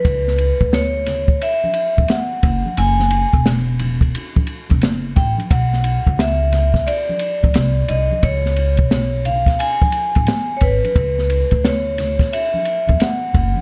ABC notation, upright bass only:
X:1
M:4/4
L:1/16
Q:"Swing 16ths" 1/4=88
K:C#phr
V:1 name="Upright bass" clef=bass
C,,3 D,,4- D,, z3 E,, z2 F,,, z | F,,,3 E,,,4- E,,, z3 E,,, F,,,2 A,,, z | B,,,3 C,,4- C,, z3 D,, =C,,2 C,, z | C,,3 B,,,4- B,,, z3 A,,, z2 G,,, z |
C,,3 D,,4- D,, z3 E,, z2 F,,, z |]